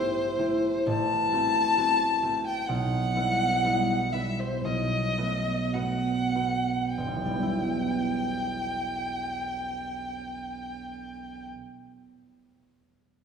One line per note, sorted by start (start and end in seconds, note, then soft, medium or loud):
0.00 0.85 A1 soft
0.00 0.38 A3 soft
0.00 0.38 E4 soft
0.00 0.38 G4 soft
0.00 0.88 C5 medium
0.39 1.31 A3 soft
0.39 0.90 E4 soft
0.39 0.90 G4 soft
0.86 2.72 A1 soft
0.86 2.45 A5 medium
1.32 1.76 A3 soft
1.32 1.76 C4 soft
1.32 1.77 F#4 soft
1.77 2.22 A3 soft
1.77 2.22 C4 soft
1.77 2.23 F#4 soft
2.23 2.73 A3 soft
2.23 2.73 C4 soft
2.23 2.73 F#4 soft
2.47 2.69 G5 medium
2.67 4.63 B1 soft
2.67 4.14 F#5 medium
3.16 3.63 G3 soft
3.16 3.63 B3 soft
3.16 3.64 E4 soft
3.64 4.12 G3 soft
3.64 4.12 B3 soft
3.64 4.13 E4 soft
4.13 4.68 G3 soft
4.13 5.17 B3 soft
4.13 4.69 E4 soft
4.13 4.41 E5 medium
4.39 4.66 C5 soft
4.65 7.02 B1 soft
4.65 5.75 D#5 medium
5.18 5.73 A3 soft
5.18 5.73 B3 soft
5.18 5.73 F#4 soft
5.73 6.34 A3 soft
5.73 6.34 B3 soft
5.73 6.35 F#4 soft
5.73 6.96 F#5 medium
6.35 7.02 A3 soft
6.35 7.32 B3 soft
6.35 7.02 F#4 soft
6.96 11.48 E1 soft
6.96 11.47 G5 soft
7.07 11.57 B1 soft
7.15 11.66 E3 soft
7.25 11.75 G3 soft
7.33 11.84 B3 soft
7.43 11.93 E4 soft